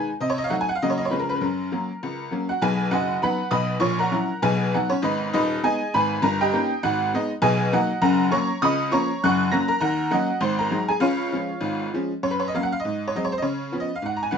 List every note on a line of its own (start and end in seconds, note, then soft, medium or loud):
0.21 0.47 C3 medium
0.21 0.31 D#5 medium
0.30 0.39 C#5 medium
0.38 0.45 D#5 medium
0.44 0.51 F5 medium
0.50 0.67 F#3 soft
0.50 0.67 A3 soft
0.50 0.68 D#4 soft
0.50 0.60 F#5 medium
0.61 0.70 G#5 medium
0.69 0.76 F#5 medium
0.75 0.82 F5 medium
0.82 1.08 C#3 medium
0.82 0.99 F#3 soft
0.82 0.99 A#3 soft
0.82 1.00 F#4 soft
0.82 0.91 D#5 medium
0.90 0.99 C#5 medium
0.98 1.05 D#5 medium
1.05 1.12 C#5 medium
1.10 1.37 C#3 medium
1.10 1.28 F3 soft
1.10 1.29 G#3 soft
1.10 1.29 C#4 soft
1.10 1.20 B4 medium
1.20 1.29 A#4 medium
1.29 1.34 B4 medium
1.35 1.42 B4 soft
1.41 1.67 F#2 medium
1.41 1.71 C#4 soft
1.41 2.50 A#4 soft
1.72 1.89 F#3 soft
1.72 1.89 A#3 soft
1.72 1.89 C#4 soft
2.03 2.28 C#2 soft
2.31 2.48 F#3 soft
2.31 2.49 A#3 soft
2.31 2.49 C#4 soft
2.49 2.62 F#4 soft
2.49 2.62 F#5 medium
2.62 2.86 B1 medium
2.62 2.86 B2 medium
2.62 2.91 G#4 medium
2.62 2.92 G#5 medium
2.91 3.16 F#1 medium
2.91 3.16 F#2 medium
2.91 3.21 F#4 medium
2.91 3.21 D#5 medium
2.91 3.22 F#5 medium
3.22 3.39 F#3 soft
3.22 3.39 B3 soft
3.22 3.39 D#4 soft
3.22 3.51 B4 medium
3.22 3.51 F#5 medium
3.22 3.50 B5 medium
3.51 3.76 B1 medium
3.51 3.76 B2 medium
3.51 3.81 D#5 medium
3.51 3.80 B5 medium
3.51 3.82 D#6 medium
3.80 4.07 A#1 medium
3.80 4.07 A#2 medium
3.80 3.98 C#5 medium
3.80 3.99 C#6 medium
3.99 4.39 A#4 medium
3.99 4.40 F#5 medium
3.99 4.42 A#5 medium
4.11 4.29 F#3 soft
4.11 4.28 C#4 soft
4.11 4.29 E4 soft
4.42 4.68 B1 medium
4.42 4.68 B2 medium
4.42 4.71 G#4 medium
4.42 4.73 G#5 medium
4.74 4.91 F#3 soft
4.74 4.91 B3 soft
4.74 4.91 D#4 soft
4.74 4.91 F#4 medium
4.74 4.91 F#5 medium
4.90 5.02 C#4 medium
4.90 5.02 C#5 medium
5.02 5.27 G#1 medium
5.02 5.27 G#2 medium
5.02 5.32 D#4 soft
5.02 5.31 B4 medium
5.02 5.32 D#5 medium
5.33 5.57 D#1 medium
5.33 5.57 D#2 medium
5.33 5.61 D#4 medium
5.33 5.61 B4 medium
5.33 5.63 D#5 medium
5.63 5.80 G#3 medium
5.63 5.80 B3 soft
5.63 5.80 D#4 soft
5.63 5.92 G#4 medium
5.63 5.91 D#5 medium
5.63 5.93 G#5 loud
5.94 6.18 G#1 medium
5.94 6.18 G#2 medium
5.94 6.23 B4 medium
5.94 6.22 G#5 medium
5.94 6.23 B5 medium
6.22 6.48 G1 medium
6.22 6.48 G2 medium
6.22 6.40 A#4 medium
6.22 6.40 A#5 loud
6.41 6.81 G4 medium
6.41 6.81 D#5 medium
6.41 6.83 G5 loud
6.53 6.70 A#3 medium
6.53 6.70 C#4 soft
6.53 6.70 D#4 soft
6.83 7.09 G#1 medium
6.83 7.09 G#2 medium
6.83 7.12 F#4 medium
6.83 7.13 F#5 loud
7.14 7.30 G#3 medium
7.14 7.30 B3 soft
7.14 7.30 D#4 medium
7.14 7.31 D#5 medium
7.42 7.68 B1 medium
7.42 7.68 B2 loud
7.42 7.71 G#4 medium
7.42 7.71 D#5 medium
7.42 7.72 G#5 loud
7.73 7.90 F#3 medium
7.73 7.89 A#3 medium
7.73 7.90 D#4 medium
7.73 8.01 F#4 medium
7.73 8.01 D#5 medium
7.73 8.01 F#5 medium
8.02 8.28 F#1 medium
8.02 8.28 F#2 loud
8.02 8.31 A#4 medium
8.02 8.30 F#5 medium
8.02 8.31 A#5 loud
8.31 8.48 F#3 soft
8.31 8.49 A#3 soft
8.31 8.49 C#4 medium
8.31 8.60 C#5 medium
8.31 8.61 A#5 medium
8.31 8.62 C#6 medium
8.62 8.88 C#2 medium
8.62 8.88 C#3 medium
8.62 8.91 D#5 medium
8.62 8.91 B5 medium
8.62 8.92 D#6 loud
8.91 9.08 F3 medium
8.91 9.09 A#3 medium
8.91 9.09 C#4 medium
8.91 9.21 C#5 medium
8.91 9.21 A#5 medium
8.91 9.22 C#6 medium
9.24 9.49 F#1 medium
9.24 9.49 F#2 loud
9.24 9.52 F#5 medium
9.24 9.52 C#6 medium
9.24 9.53 F#6 loud
9.51 9.69 F#3 medium
9.51 9.69 A#3 soft
9.51 9.69 C#4 soft
9.51 9.67 A#5 medium
9.51 9.70 A#6 medium
9.68 9.81 A#4 medium
9.68 9.79 A#5 loud
9.80 10.07 D#2 medium
9.80 10.07 D#3 medium
9.80 10.10 A#4 medium
9.80 10.10 F#5 medium
9.80 10.12 A#5 loud
10.11 10.28 F#3 medium
10.11 10.28 A#3 soft
10.11 10.29 C#4 soft
10.11 10.41 F#4 medium
10.11 10.40 D#5 medium
10.11 10.42 F#5 medium
10.41 10.67 G#1 medium
10.41 10.67 G#2 medium
10.41 10.59 C5 medium
10.41 10.59 C6 medium
10.59 10.88 A#4 medium
10.59 10.89 A#5 medium
10.71 10.88 F#3 soft
10.71 10.88 G#3 soft
10.71 10.88 D#4 soft
10.88 11.02 G#4 medium
10.88 11.02 G#5 medium
11.00 11.27 C#2 medium
11.00 11.27 C#3 medium
11.00 11.88 F4 medium
11.00 11.88 C#5 medium
11.00 11.92 F5 medium
11.32 11.49 F3 soft
11.32 11.50 G#3 soft
11.32 11.50 C#4 soft
11.61 11.87 G#1 medium
11.61 11.87 G#2 medium
11.94 12.10 F3 soft
11.94 12.10 G#3 soft
11.94 12.11 C#4 soft
12.23 12.48 F#2 medium
12.23 12.32 C#5 medium
12.31 12.40 B4 medium
12.40 12.46 C#5 medium
12.48 12.53 D#5 medium
12.54 12.71 F#3 soft
12.54 12.70 A#3 soft
12.54 12.71 C#4 soft
12.54 12.63 F5 medium
12.63 12.71 F#5 medium
12.72 12.77 F5 medium
12.80 13.08 D#5 medium
12.85 13.09 G#2 medium
13.08 13.13 C#5 medium
13.16 13.31 F#3 soft
13.16 13.32 G#3 soft
13.16 13.32 C4 soft
13.16 13.23 D#5 medium
13.25 13.32 C#5 medium
13.32 13.37 C5 medium
13.38 13.43 D#5 medium
13.42 13.68 C#3 medium
13.42 13.79 C#5 medium
13.72 13.89 F3 soft
13.72 13.89 B3 soft
13.72 13.89 C#4 soft
13.80 13.96 D#5 medium
13.96 14.06 F5 medium
14.02 14.28 G#2 medium
14.02 14.17 F#5 medium
14.17 14.24 A#5 medium
14.23 14.31 G#5 medium
14.31 14.38 G1 medium
14.31 14.38 G2 medium
14.31 14.38 F#5 medium